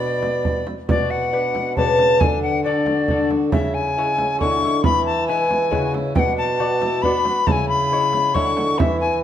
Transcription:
Already playing: lute B2 D4 B4, bassoon B2, recorder D5, violin B5
0.23 frame drum
0.45 frame drum
0.67 frame drum
0.88 bassoon B2, lute B2, violin F#4, recorder D5, frame drum
1.10 recorder F#5
1.33 violin D4, lute D4 B4
1.55 frame drum
1.76 lute B2 B4 D5, bassoon C#3, recorder A5, frame drum
1.99 frame drum
2.20 bassoon D3, lute D3, violin D4, recorder G#5, frame drum
2.42 recorder F#5
2.64 lute D4 A4, violin F#4, recorder D5
2.86 violin F#4, frame drum
3.08 lute D4 A4, frame drum
3.31 frame drum
3.52 bassoon C#3, lute C#3, violin E4, recorder E5, frame drum
3.74 recorder G#5
3.97 lute G#3 E4 C#5, violin E4
4.18 frame drum
4.40 bassoon D3, lute D3 G#3 E4 C#5, violin F#4, recorder C#6, frame drum
4.63 violin E4, frame drum
4.84 lute E3, bassoon E3, violin E4, recorder B5, frame drum
5.06 recorder A5
5.28 lute G#3 E4 B4, recorder G#5
5.51 frame drum
5.71 lute C#3 G#3 E4 B4, bassoon C#3, violin F#4, frame drum
5.94 violin E4, frame drum
6.15 lute B2, bassoon B2, violin D4, recorder F#5 G5, frame drum
6.37 recorder A5
6.59 lute B3 F#4 D5, violin F#4
6.82 violin E4, frame drum
7.02 lute B3 F#4 D5, violin D4, recorder B5, frame drum
7.25 violin F#4, frame drum
7.47 bassoon C#3, lute C#3, violin E4, recorder A5, frame drum
7.51 recorder G#5
7.69 recorder B5
7.92 lute G#3 E4 C#5, violin G#4
8.13 frame drum
8.34 lute D3 G#3 E4 C#5, bassoon D3, violin F#4, recorder C#6, frame drum
8.57 frame drum
8.78 lute E3, bassoon E3, violin E4, recorder E5, frame drum
9.00 recorder G#5

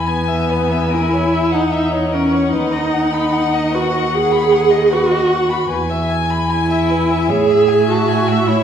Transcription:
Already playing: cello E2, violin G#5
0.06 viola B3, violin G#5
0.28 violin E5
0.49 violin B4
0.71 violin E5
0.91 viola E4, violin A#4
1.13 violin C#5
1.33 violin E5
1.52 viola D#4, violin F#5
1.72 violin E5 F#5
1.91 violin C#5
2.12 viola C#4, violin A#4
2.32 violin C#5
2.53 cello D#2, viola D#4, violin B4
2.72 violin D#5
2.94 violin F#5
3.13 violin B5
3.32 violin F#5
3.54 violin D#5
3.72 viola F#4, violin B4
3.91 violin D#5
4.12 viola G#4, violin F#5
4.31 violin B5
4.51 violin F#5
4.70 violin D#5
4.90 viola F#4, violin B4
5.11 violin D#5
5.30 violin F#5
5.49 violin B5
5.69 cello E2, violin B4 G#5
5.90 violin E5
6.09 violin G#5
6.30 violin B5
6.49 viola E4, violin G#5
6.70 violin E5
6.90 violin B4
7.10 violin E5
7.29 cello A2, viola G#4, violin C#5 E5
7.49 violin E5
7.68 violin G#5
7.90 viola F#4, violin A5
8.08 violin G#5
8.28 violin E5
8.48 viola E4, violin C#5

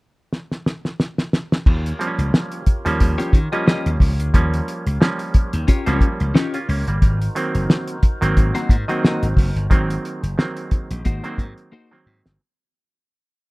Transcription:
0.33 snare
0.52 snare
0.66 snare
0.85 snare
1.00 snare
1.18 snare
1.33 snare
1.52 snare
1.66 slap bass D#2, tonewheel organ F4 G4 A#4 C#5, kick, crash
1.86 closed hi-hat
1.99 clav F3 G3 A#3 C4, closed hi-hat
2.07 clav C#4
2.18 slap bass C#2, closed hi-hat
2.34 snare
2.52 closed hi-hat
2.67 muted slap bass stroke, kick, closed hi-hat
2.85 slap bass D#2, clav F3 G3 A#3 C#4, closed hi-hat
3.00 slap bass D#2, kick, closed hi-hat
3.18 clean electric guitar C#4 F4 G4 C#5, snare, closed hi-hat
3.33 slap bass D#3, kick, closed hi-hat
3.52 clav F3 G3 A#3 C#4, clean electric guitar C#4 F4 G4 D#5, closed hi-hat
3.66 clean electric guitar C#4 F4 G4 D#5, snare
3.86 slap bass D#2, closed hi-hat
4.00 slap bass C#2, kick, open hi-hat
4.20 slap bass D2, closed hi-hat
4.34 slap bass D#2, clav F3 G3 A#3 C#4, kick, closed hi-hat
4.54 closed hi-hat
4.68 closed hi-hat
4.86 slap bass C#2, closed hi-hat
5.01 clav F3 G3 A#3 C#4, snare
5.19 closed hi-hat
5.34 muted slap bass stroke, kick, closed hi-hat
5.53 slap bass D#2, closed hi-hat
5.68 clean electric guitar C#4 F4 G4 C#5, kick, closed hi-hat
5.86 slap bass C#2, clav F3 G3 A#3 C#4, clean electric guitar C#4 F4 G4 C#5, snare, closed hi-hat
6.01 kick, closed hi-hat
6.20 slap bass C#2, closed hi-hat
6.34 clean electric guitar C#4 F4 G4 C#5, clav D#4 G4, snare
6.54 clav C#4 F4, closed hi-hat
6.69 slap bass C#2, clav A#3 C#4, open hi-hat
6.87 slap bass G1, clav G3 A#3, closed hi-hat
7.02 slap bass G#1, tonewheel organ D#4 F#4 C5, kick, closed hi-hat
7.22 closed hi-hat
7.35 clav D#3 F#3 A#3 C4, closed hi-hat
7.55 slap bass F#1, closed hi-hat
7.70 snare
7.88 closed hi-hat
8.03 muted slap bass stroke, kick, closed hi-hat
8.21 slap bass G#1, clav D#3 F#3 A#3 C4, closed hi-hat
8.37 slap bass G#1, kick, closed hi-hat
8.55 clean electric guitar A#3 D#4 F#4 C5, snare, closed hi-hat
8.69 slap bass G#2, kick, closed hi-hat
8.88 clav D#3 F#3 A#3 C4, clean electric guitar A#3 D#4 F#4 D#5, closed hi-hat
9.03 clean electric guitar A#3 D#4 F#4 D#5, snare
9.23 slap bass G#1, closed hi-hat
9.37 slap bass F#1, kick, open hi-hat
9.56 slap bass G1, closed hi-hat
9.70 slap bass G#1, clav D#3 F#3 A#3 C4, tonewheel organ G#4, kick, closed hi-hat
9.90 closed hi-hat
10.05 closed hi-hat
10.23 slap bass F#1, closed hi-hat
10.38 clav D#3 F#3 A#3 C4, snare
10.57 closed hi-hat
10.71 muted slap bass stroke, kick, closed hi-hat
10.91 slap bass A#1, closed hi-hat
11.05 slap bass G#1, clean electric guitar A#3 D#4 F#4 C5, kick, closed hi-hat
11.24 clav D#3 F#3 A#3 C4, clean electric guitar A#3 D#4 F#4 C5, closed hi-hat
11.38 slap bass G#2, kick, closed hi-hat
11.58 closed hi-hat
11.72 clean electric guitar A#3 D#4 F#4 C5
11.91 clav D#3 F#3 A#3 C4
12.06 slap bass G#2
12.26 slap bass G1, snare

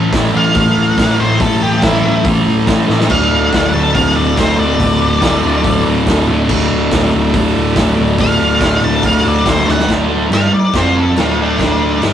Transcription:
Already playing: distorted electric guitar A2 E3 A3
0.12 picked electric bass A1, distorted electric guitar A2 E3, kick, snare, open hi-hat
0.16 distorted electric guitar A3
0.33 picked electric bass A1, distorted electric guitar A3
0.37 distorted electric guitar E3, lead electric guitar F5
0.55 picked electric bass A1, distorted electric guitar A2 E3, kick, open hi-hat
0.59 distorted electric guitar A3
0.77 picked electric bass A1
0.98 picked electric bass A1, distorted electric guitar A2 E3, kick, snare, open hi-hat
1.02 distorted electric guitar A3
1.19 picked electric bass A1, distorted electric guitar E3 A3, lead electric guitar C5
1.40 picked electric bass A1, distorted electric guitar A2 E3, lead electric guitar A4, kick, open hi-hat
1.45 distorted electric guitar A3
1.63 picked electric bass A1, lead electric guitar G4
1.82 picked electric bass A1, distorted electric guitar A2 E3, lead electric guitar E4, kick, snare, open hi-hat
1.87 distorted electric guitar A3
2.05 picked electric bass A1, distorted electric guitar A3
2.09 distorted electric guitar E3
2.24 picked electric bass A1, distorted electric guitar A2 E3 A3, kick, open hi-hat
2.47 picked electric bass A1
2.67 picked electric bass A1, distorted electric guitar A2 E3, kick, snare, open hi-hat
2.71 distorted electric guitar A3
2.88 picked electric bass A1, distorted electric guitar E3 A3, snare
3.01 snare
3.08 picked electric bass D1, distorted electric guitar D2 A2, transistor combo organ F#4 A4 D5, lead electric guitar F5, kick, crash
3.13 distorted electric guitar D3
3.31 picked electric bass D1
3.52 picked electric bass D1, distorted electric guitar D2 A2, kick, snare, open hi-hat
3.56 distorted electric guitar D3
3.72 picked electric bass D1, distorted electric guitar D3, lead electric guitar A5
3.76 distorted electric guitar A2
3.94 picked electric bass D1, distorted electric guitar D2 A2, lead electric guitar F5, kick, open hi-hat
3.98 distorted electric guitar D3
4.16 picked electric bass D1, lead electric guitar D5
4.37 picked electric bass D1, distorted electric guitar D2 A2 D3, lead electric guitar C5, kick, snare, open hi-hat
4.58 picked electric bass D1, distorted electric guitar A2 D3, lead electric guitar D5
4.79 picked electric bass D1, distorted electric guitar D2 A2, kick, open hi-hat
4.83 distorted electric guitar D3
5.01 picked electric bass D1
5.21 picked electric bass D1, distorted electric guitar D2 A2, kick, snare, open hi-hat
5.25 distorted electric guitar D3
5.43 picked electric bass D1, distorted electric guitar A2 D3
5.63 picked electric bass D1, distorted electric guitar D2 A2, kick, open hi-hat
5.67 distorted electric guitar D3
5.86 picked electric bass D1
6.06 picked electric bass D1, distorted electric guitar D2 A2 D3, kick, snare, open hi-hat
6.28 picked electric bass D1, distorted electric guitar A2 D3
6.48 picked electric bass D1, distorted electric guitar D2 A2, transistor combo organ F#4 A4 D5, kick, crash
6.53 distorted electric guitar D3
6.71 picked electric bass D1
6.91 picked electric bass D1, distorted electric guitar D2 A2, kick, snare, open hi-hat
6.96 distorted electric guitar D3
7.12 picked electric bass D1, distorted electric guitar A2 D3
7.34 picked electric bass D1, distorted electric guitar D2 A2 D3, kick, open hi-hat
7.56 picked electric bass D1
7.76 picked electric bass D1, distorted electric guitar D2 A2, kick, snare, open hi-hat
7.81 distorted electric guitar D3
7.97 picked electric bass D1, distorted electric guitar D3
8.01 distorted electric guitar A2
8.18 picked electric bass D1, distorted electric guitar D2 A2 D3, lead electric guitar F5, kick, open hi-hat
8.41 picked electric bass D1
8.61 picked electric bass D1, distorted electric guitar D2 A2, kick, snare, open hi-hat
8.65 distorted electric guitar D3
8.82 picked electric bass D1, distorted electric guitar D3, lead electric guitar A5
8.87 distorted electric guitar A2
9.03 picked electric bass D1, distorted electric guitar D2 A2 D3, lead electric guitar F5, kick, open hi-hat
9.26 picked electric bass D1, lead electric guitar D5
9.45 picked electric bass D1, distorted electric guitar D2 A2 D3, lead electric guitar C5, kick, snare, open hi-hat
9.65 picked electric bass D1, distorted electric guitar D3, snare
9.69 distorted electric guitar A2, lead electric guitar F#5
9.79 snare
9.88 picked electric bass D1, distorted electric guitar D2 D3, kick, snare, crash
10.30 picked electric bass G1, distorted electric guitar G2 G3, lead electric guitar F5, snare, crash
10.52 lead electric guitar D5, muted distorted electric guitar stroke
10.74 picked electric bass F1, distorted electric guitar F2 F3, lead electric guitar C5, kick, snare, crash
10.98 lead electric guitar A4
11.16 picked electric bass D1, distorted electric guitar D2 D3, lead electric guitar F4, snare, crash
11.42 lead electric guitar D4
11.59 picked electric bass D1, distorted electric guitar D2 D3, lead electric guitar D4, kick, snare, crash
12.01 picked electric bass G1, distorted electric guitar G2 G3, snare, crash

